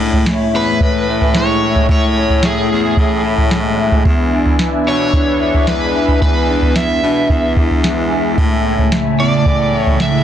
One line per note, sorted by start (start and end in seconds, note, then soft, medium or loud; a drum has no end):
0.00 0.24 A2 loud
0.00 1.88 A2 medium
0.00 1.34 G#3 medium
0.00 0.52 C#4 medium
0.00 0.26 E4 medium
0.00 4.01 E4 medium
0.00 4.01 C#5 medium
0.00 4.01 E5 medium
0.00 10.24 G#5 medium
0.13 floor tom medium
0.26 1.07 E4 medium
0.26 snare loud
0.53 0.80 E2 medium
0.53 2.15 C#4 medium
0.53 1.37 B4 medium
0.80 1.85 A2 medium
0.80 2.96 E3 medium
0.80 kick medium
0.80 floor tom medium
1.08 1.61 E4 medium
1.21 floor tom medium
1.34 3.50 G#3 medium
1.34 1.86 C#5 medium
1.34 snare medium
1.62 2.43 E4 medium
1.76 floor tom medium
1.89 4.05 A2 medium
1.89 2.66 A2 loud
1.89 2.46 C#5 medium
1.89 kick loud
1.89 floor tom loud
2.16 2.69 C#4 medium
2.30 floor tom medium
2.43 3.23 E4 medium
2.43 3.21 G#4 medium
2.43 snare loud
2.70 2.96 E2 medium
2.70 4.10 C#4 medium
2.97 4.01 A2 loud
2.97 4.35 E3 medium
2.97 kick medium
2.97 floor tom medium
3.24 3.78 E4 medium
3.38 floor tom medium
3.51 4.35 G#3 medium
3.51 snare medium
3.78 4.35 E4 medium
3.92 floor tom medium
4.05 6.20 E2 medium
4.05 4.57 E2 medium
4.05 8.33 D4 medium
4.05 8.34 B4 medium
4.05 10.24 E5 medium
4.05 kick loud
4.05 floor tom loud
4.32 4.85 D4 medium
4.46 floor tom medium
4.59 5.39 E4 medium
4.59 snare medium
4.86 5.12 B2 medium
4.86 6.47 D4 medium
4.86 5.71 C#5 medium
5.13 6.18 E2 medium
5.13 7.29 E3 medium
5.13 kick medium
5.13 floor tom medium
5.40 5.94 E4 medium
5.54 floor tom medium
5.67 7.84 G#3 medium
5.67 6.21 B4 medium
5.67 snare medium
5.94 6.75 E4 medium
6.08 floor tom medium
6.21 8.37 E2 medium
6.21 6.99 E2 medium
6.21 6.78 B4 medium
6.21 kick loud
6.21 floor tom medium
6.48 7.01 D4 medium
6.62 floor tom medium
6.75 7.56 E4 medium
6.75 7.53 E5 medium
6.75 snare loud
7.02 7.28 B2 medium
7.02 8.43 D4 soft
7.30 8.34 E2 loud
7.30 9.45 E3 medium
7.30 kick medium
7.30 floor tom medium
7.56 8.10 E4 medium
7.56 kick medium
7.71 floor tom medium
7.84 10.00 G#3 medium
7.84 snare medium
8.11 8.91 E4 medium
8.37 10.24 A2 medium
8.37 8.89 A2 loud
8.37 10.24 C#3 medium
8.37 10.24 A5 medium
8.37 kick loud
8.37 floor tom loud
8.64 9.18 C#4 medium
8.79 floor tom medium
8.92 9.73 E4 medium
8.92 snare loud
9.19 9.45 E2 medium
9.19 9.31 B3 medium
9.19 9.77 D5 medium
9.46 10.24 A2 medium
9.46 10.24 E3 medium
9.46 kick medium
9.46 floor tom soft
9.73 10.24 E4 medium
9.73 10.01 C#5 medium
9.87 floor tom medium
10.00 10.24 G#3 medium
10.00 10.24 E5 loud
10.00 snare medium